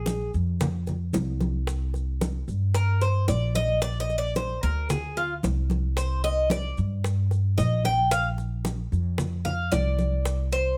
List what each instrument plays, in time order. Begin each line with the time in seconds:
Already playing: upright bass A#1, cuban tres G#4
0.06 high bongo, high conga, maracas
0.34 upright bass F2, high conga, maracas
0.60 high bongo, high conga, low conga, maracas
0.87 high bongo, high conga, low conga, maracas
1.13 upright bass C2, high bongo, low bongo, high conga, maracas
1.40 high bongo, high conga, maracas
1.67 high bongo, high conga, maracas
1.94 high bongo, high conga, maracas
2.21 high bongo, high conga, maracas
2.48 upright bass G2, high conga, maracas
2.75 cuban tres A#4, high bongo, high conga, maracas
3.02 cuban tres C5, high bongo, high conga, maracas
3.28 upright bass A#1, cuban tres D5, high bongo, low bongo, high conga, maracas
3.55 cuban tres D#5, high bongo, high conga, maracas
3.82 cuban tres D5, high bongo, high conga, maracas
4.00 cuban tres D#5
4.09 high bongo, high conga, maracas
4.18 cuban tres D5
4.36 cuban tres C5, high bongo, high conga, maracas
4.63 upright bass D2, cuban tres A#4, high conga, maracas
4.90 cuban tres G#4, high bongo, high conga, low conga, maracas
5.17 cuban tres F4, high bongo, high conga, maracas
5.43 upright bass C2, high bongo, low bongo, high conga, maracas
5.70 high bongo, high conga, maracas
5.97 cuban tres C5, high bongo, high conga, maracas
6.24 cuban tres D#5, high bongo, high conga, maracas
6.50 cuban tres D5, high bongo, high conga, maracas
6.77 upright bass G2, high conga, maracas
7.04 high bongo, high conga, maracas
7.31 high bongo, high conga, maracas
7.58 upright bass A#1, cuban tres D#5, high bongo, low bongo, high conga, maracas
7.84 cuban tres G5, high bongo, high conga, maracas
8.11 cuban tres F5, high bongo, high conga, maracas
8.38 high bongo, high conga, maracas
8.65 high bongo, high conga, maracas
8.92 upright bass F2, high conga, maracas
9.18 high bongo, high conga, low conga, maracas
9.45 cuban tres F5, high bongo, high conga, low conga, maracas
9.72 upright bass C2, cuban tres D5, high bongo, low bongo, high conga, maracas
9.99 high bongo, high conga, maracas
10.25 high bongo, high conga, maracas
10.52 cuban tres C5, high bongo, high conga, maracas